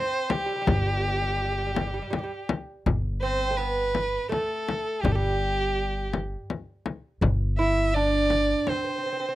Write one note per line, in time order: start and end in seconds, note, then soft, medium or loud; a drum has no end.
0.00 0.32 C4 medium
0.00 0.32 C5 medium
0.30 0.37 G3 medium
0.30 2.49 G4 medium
0.30 frame drum medium
0.39 0.45 G3 soft
0.46 0.53 G3 soft
0.56 0.60 G3 soft
0.61 0.67 G3 medium
0.67 1.98 G1 medium
0.67 0.74 G3 soft
0.67 frame drum medium
0.75 0.82 G3 soft
0.87 0.92 G3 soft
0.93 0.99 G3 soft
1.00 1.06 G3 soft
1.08 1.14 G3 soft
1.16 1.20 G3 soft
1.21 1.26 G3 soft
1.27 1.34 G3 soft
1.36 1.42 G3 soft
1.44 1.51 G3 soft
1.52 1.57 G3 soft
1.58 1.65 G3 soft
1.66 1.73 G3 soft
1.74 1.80 G3 soft
1.74 frame drum medium
1.81 1.86 G3 soft
1.87 1.93 G3 soft
1.94 2.01 G3 soft
2.02 2.09 G3 soft
2.10 2.17 G3 soft
2.10 frame drum medium
2.19 2.22 G3 soft
2.24 2.31 G3 soft
2.49 frame drum medium
2.86 4.16 G1 medium
2.86 frame drum medium
3.22 3.50 C4 medium
3.22 3.59 C5 medium
3.51 3.58 A3 medium
3.57 4.29 B3 medium
3.57 4.30 B4 medium
3.95 frame drum medium
4.29 5.05 A3 medium
4.29 5.03 A4 medium
4.29 frame drum medium
4.69 frame drum medium
5.02 6.34 G1 medium
5.02 5.14 G3 medium
5.02 5.13 G4 medium
5.02 frame drum medium
5.12 6.08 G3 medium
5.12 6.12 G4 medium
5.12 5.17 A4 medium
6.13 frame drum medium
6.50 frame drum medium
6.86 frame drum medium
7.21 8.52 G1 medium
7.21 frame drum medium
7.59 7.96 E4 medium
7.59 7.96 E5 medium
7.95 8.70 D4 medium
7.95 8.71 D5 loud
8.30 frame drum medium
8.67 8.75 C4 medium
8.67 9.35 C5 medium
8.67 frame drum medium
8.76 8.83 C4 soft
8.84 8.88 C4 medium
8.89 8.97 C4 soft
8.98 9.05 C4 soft
9.06 9.11 C4 soft
9.13 9.19 C4 soft
9.20 9.28 C4 soft
9.29 9.35 C4 medium